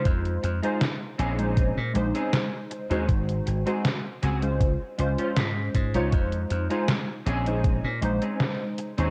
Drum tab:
HH |xxxxx-xxx-xxx-xx|xxxxx-xxx-xxx-xx|xxxxx-xxx-xxx-xx|
SD |----o-------o---|----o-o-----o---|----o-------o---|
BD |o-------o-------|o-------o-----o-|o-------o-------|